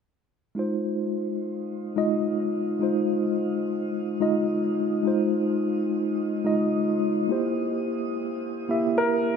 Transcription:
0.55 G#3 D#4 F4
0.59 C5
1.96 G#3 D#4 F4 D#5
2.79 G#3 D#4 F4
2.83 C5
4.20 G#3 D#4 F4 D#5
5.03 G#3 D#4 F4
5.07 C5
6.45 G#3 D#4 F4 D#5
7.28 A#3 E4 G4
7.32 C5
8.69 A#3 E4 G4 E5
8.98 A#4

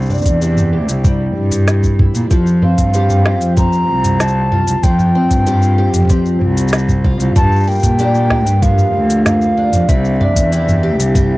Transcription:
Already playing: C2 C3 D4 G4
0.02 cabasa
0.06 cabasa
0.10 D4, mid tom, cabasa
0.14 cabasa
0.18 cabasa
0.22 E2, kick, cabasa
0.26 open hi-hat, cabasa
0.41 D4 E4 G4, open hi-hat, cabasa
0.57 mid tom, cabasa
0.73 G4
0.89 C2, open hi-hat, cabasa
1.04 G3, kick, mid tom, open hi-hat, cabasa
1.36 G2
1.52 mid tom, open hi-hat, cabasa
1.68 snare, open hi-hat, cabasa
1.83 kick, cabasa
1.99 E4, kick, mid tom
2.15 A#2, open hi-hat, cabasa
2.31 F2 F3, kick, open hi-hat, cabasa
2.47 cabasa
2.62 C4 F5, mid tom
2.78 G2, kick, open hi-hat, cabasa
2.94 C4 F4 G4, open hi-hat, cabasa
3.10 mid tom, cabasa
3.25 G4, snare
3.41 F2, open hi-hat, cabasa
3.57 C4 A#5, kick, mid tom, open hi-hat, cabasa
3.73 cabasa
3.89 C2
4.04 mid tom, open hi-hat, cabasa
4.20 A5, snare, open hi-hat, cabasa
4.28 cabasa
4.52 F4, mid tom
4.67 C2, open hi-hat, cabasa
4.83 F2 F3 G5, kick, open hi-hat, cabasa
4.99 mid tom, cabasa
5.15 C4
5.31 G2, kick, open hi-hat, cabasa
5.46 C4 F4 G4, mid tom, open hi-hat, cabasa
5.62 cabasa
5.78 G4
5.94 F2, mid tom, open hi-hat, cabasa
5.96 mid tom
5.98 mid tom
6.00 mid tom
6.02 mid tom
6.05 mid tom
6.07 C4, kick, mid tom, open hi-hat, cabasa
6.26 cabasa
6.41 C2, mid tom
6.57 open hi-hat, cabasa
6.68 cabasa
6.73 snare, open hi-hat, cabasa
6.78 cabasa
6.89 kick, mid tom, cabasa
7.04 F4, kick
7.20 C2, open hi-hat, cabasa
7.36 G2 A5, kick, mid tom, open hi-hat, cabasa
7.38 mid tom
7.40 mid tom
7.42 mid tom
7.45 mid tom
7.47 mid tom
7.49 mid tom, cabasa
7.56 cabasa
7.60 A5, cabasa
7.63 cabasa
7.67 A#3 G5, cabasa
7.71 cabasa
7.75 cabasa
7.79 cabasa
7.83 A#2, kick, mid tom, open hi-hat, cabasa
7.99 A#3 D4 G4, open hi-hat, cabasa
8.15 cabasa
8.30 G4, snare, mid tom
8.47 G2, open hi-hat, cabasa
8.62 F3 F5, kick, open hi-hat, cabasa
8.78 mid tom, cabasa
8.94 D2
9.10 open hi-hat, cabasa
9.25 F5, snare, mid tom, open hi-hat, cabasa
9.42 cabasa
9.57 D4
9.73 F2, mid tom, open hi-hat, cabasa
9.75 mid tom
9.77 mid tom
9.80 mid tom
9.82 mid tom
9.87 C2 C3 E5, kick, mid tom, open hi-hat, cabasa
10.05 cabasa
10.21 D4, mid tom
10.36 E2, kick, open hi-hat, cabasa
10.52 D4 E4 G4, open hi-hat, cabasa
10.68 mid tom, cabasa
10.83 G4
10.99 C2, open hi-hat, cabasa
11.15 G3, kick, mid tom, open hi-hat, cabasa

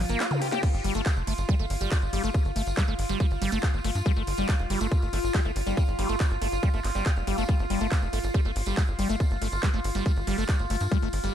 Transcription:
Already playing: F4
0.09 G1 A#3, closed hi-hat, tambourine
0.20 G4, snare, clap, closed hi-hat, ride, tambourine
0.31 closed hi-hat, mid tom, tambourine, zap
0.42 G4, open hi-hat, ride
0.52 G4, snare, closed hi-hat, tambourine
0.63 G3 F4, kick, closed hi-hat, crash, ride, tambourine
0.74 G1, closed hi-hat, tambourine
0.84 G1 G3, open hi-hat, ride
0.95 G1 A3, closed hi-hat, tambourine
1.06 kick, clap, closed hi-hat, ride, tambourine
1.17 F1, closed hi-hat, tambourine
1.27 G1 A3, open hi-hat, ride
1.38 G1, closed hi-hat, tambourine
1.49 G3, kick, closed hi-hat, ride, tambourine
1.59 G1 A3, closed hi-hat, tambourine
1.70 G1, open hi-hat, ride
1.81 G1 G3, closed hi-hat, tambourine
1.92 kick, clap, open hi-hat, ride, tambourine
2.02 G1, tambourine
2.13 G1 G3, open hi-hat, ride
2.24 G1 A3, closed hi-hat, tambourine
2.34 kick, closed hi-hat, ride, tambourine
2.45 G1, closed hi-hat, tambourine
2.56 G1 A3, open hi-hat, ride
2.67 G1, closed hi-hat, tambourine
2.77 G3, kick, clap, closed hi-hat, ride, tambourine
2.88 G1 A3, closed hi-hat, tambourine
2.99 G1, open hi-hat, ride
3.09 G1 G3, closed hi-hat, tambourine
3.20 G3, kick, closed hi-hat, ride, tambourine
3.31 G1, closed hi-hat, tambourine
3.42 G1 G3, open hi-hat, ride
3.52 G1 A3, closed hi-hat, tambourine
3.63 kick, clap, closed hi-hat, ride, tambourine
3.74 G1, closed hi-hat, tambourine
3.84 G1 A3, open hi-hat, ride
3.95 G2, closed hi-hat, tambourine
4.06 G3, kick, closed hi-hat, ride, tambourine
4.16 G1 A3, closed hi-hat, tambourine
4.27 G1, open hi-hat, ride
4.38 G1 G3, closed hi-hat, tambourine
4.49 kick, clap, closed hi-hat, ride, tambourine
4.59 F1, closed hi-hat, tambourine
4.70 G1 G3, open hi-hat, ride
4.81 G1 A3, closed hi-hat, tambourine
4.92 kick, closed hi-hat, ride, tambourine
5.02 G1, closed hi-hat, tambourine
5.13 G1 A3, open hi-hat, ride
5.24 G1, closed hi-hat, tambourine
5.34 G3, kick, clap, open hi-hat, ride, tambourine
5.45 G1 A3, closed hi-hat, tambourine
5.56 G1, open hi-hat, ride
5.67 G1 G3, closed hi-hat, tambourine
5.77 kick, closed hi-hat, ride, tambourine
5.88 G1, closed hi-hat, tambourine
5.99 G1 G3, open hi-hat, ride
6.09 G1 A3, closed hi-hat, tambourine
6.20 kick, clap, closed hi-hat, ride, tambourine
6.31 G1, closed hi-hat, tambourine
6.42 G1 A3, open hi-hat, ride
6.52 G1, closed hi-hat, tambourine
6.63 G3, kick, closed hi-hat, ride, tambourine
6.74 G1 A3, closed hi-hat, tambourine
6.84 G1, clap, open hi-hat, ride
6.95 G1 G3, closed hi-hat, tambourine
7.06 G3, kick, clap, closed hi-hat, ride, tambourine
7.16 F1, closed hi-hat, tambourine
7.27 G1 G3, open hi-hat, ride
7.38 G1 A3, closed hi-hat, tambourine
7.48 G3, kick, closed hi-hat, ride, tambourine
7.59 G1, closed hi-hat, tambourine
7.70 G1 G3, open hi-hat, ride
7.81 G1 A3, closed hi-hat, tambourine
7.92 kick, clap, closed hi-hat, ride, tambourine
8.02 F1, closed hi-hat, tambourine
8.13 G1 A3, open hi-hat, ride
8.24 G1, closed hi-hat, tambourine
8.34 G3, kick, closed hi-hat, ride, tambourine
8.45 G1 A3, closed hi-hat, tambourine
8.56 G1, open hi-hat, ride
8.66 G1 G3, closed hi-hat, tambourine
8.77 kick, clap, open hi-hat, ride, tambourine
8.88 G1, closed hi-hat, tambourine
8.99 G1 G3, open hi-hat, ride
9.09 G1 A3, closed hi-hat, tambourine
9.20 kick, closed hi-hat, ride, tambourine
9.30 G1, closed hi-hat, tambourine
9.42 G1 A3, open hi-hat, ride
9.52 G1, tambourine
9.63 G3, kick, clap, closed hi-hat, ride, tambourine
9.73 G1 A3, closed hi-hat, tambourine
9.84 G1, open hi-hat, ride
9.95 G1 G3, closed hi-hat, tambourine
10.06 kick, closed hi-hat, ride, tambourine
10.17 G1, closed hi-hat, tambourine
10.27 G1 G3, open hi-hat, ride
10.38 G1 A3, closed hi-hat, tambourine
10.49 kick, clap, closed hi-hat, ride, tambourine
10.59 G1, closed hi-hat, tambourine
10.70 G1 A3, open hi-hat, ride
10.80 G2, closed hi-hat, tambourine
10.92 G3, kick, closed hi-hat, ride, tambourine
11.02 G1 A3, closed hi-hat, tambourine
11.13 G1, open hi-hat, ride
11.24 G1 G3, closed hi-hat, tambourine

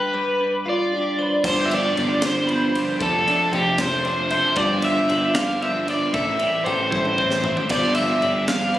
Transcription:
Already playing: G2 G3 D4 G4 B4
0.13 G3 B4
0.41 D4
0.66 F4 D5
0.92 D4 G4
1.19 B4 C5
1.44 G1 G2 D3 F3 B3 D4 C5, kick, crash
1.48 G4
1.66 D4 E5
1.70 D3 F3 B3 F4, ride
1.74 D5
1.96 G1 D3 F3 B3 D4 G4 D5, ride
2.21 D3 F3 B3 D4 C5, snare, ride
2.26 C5
2.47 D3 F3 B3 C4 D4 B5, ride
2.75 D3 F3 B3 D4 F4, ride
2.99 F1 C3 F3 A3 C4 D4 A4, kick, ride
3.26 C3 F3 A3 C4 D4 D5, ride
3.52 F1 C3 F3 A3 C4 G4 A4, ride
3.66 D4
3.78 C3 F3 A3 C4 C5, kick, snare, ride
4.03 C3 F3 A3 C4 D4 C5, ride
4.28 C3 F3 A3 C4 C5 E5, ride
4.34 A4
4.55 G1 G2 D3 F3 B3 D4 C5 D5, kick, ride
4.59 G3 C4 F4 G4
4.82 D3 F3 B3 D4 F4 E5, ride
5.07 G1 D3 F3 B3 D4 D5, ride
5.12 G4
5.34 D3 F3 B3 D4 C5 F5, snare, ride
5.60 D3 F3 B3 C4 D4 B4 E5, ride
5.85 D3 F3 B3 D4 F4, ride
5.90 D5
6.13 A1 A2 E3 A3 C4 E4 G4 A4 E5, kick, ride
6.26 A4
6.39 E3 A3 C4 E4 G4 D5, ride
6.64 A1 E3 A3 C4 E4 G4 A4 C5, ride
6.79 A4
6.91 E3 A3 C4 E4 C5, kick, high tom
7.05 high tom
7.18 E3 A3 C4 E4 C5, kick
7.30 snare
7.43 E3 A3 C4 E4 E5, floor tom
7.56 G4, floor tom
7.69 G1 G2 D3 F3 G3 B3 C4 D4 F4 G4 C5 D5, kick, crash
7.95 D3 F3 B3 D4 F4 E5, ride
8.22 G1 D3 F3 B3 D4 G4 D5, ride
8.48 D3 F3 B3 D4 C5 F5, snare, ride
8.74 B4, ride

